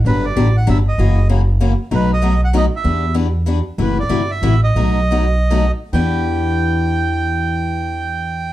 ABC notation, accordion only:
X:1
M:3/4
L:1/8
Q:"Swing" 1/4=193
K:Em
V:1 name="Accordion"
B d2 f e ^d- | ^d2 z4 | B ^d2 f d e- | e2 z4 |
B d2 e2 ^d- | ^d4- d z | g6- | g6 |]